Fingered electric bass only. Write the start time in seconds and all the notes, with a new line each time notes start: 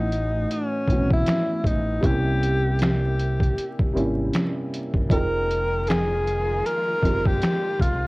Already playing: A1
0.88 B1
1.65 A1
2.04 C2
3.96 G#1
4.95 G1
5.11 F1
7.04 G1
7.80 C2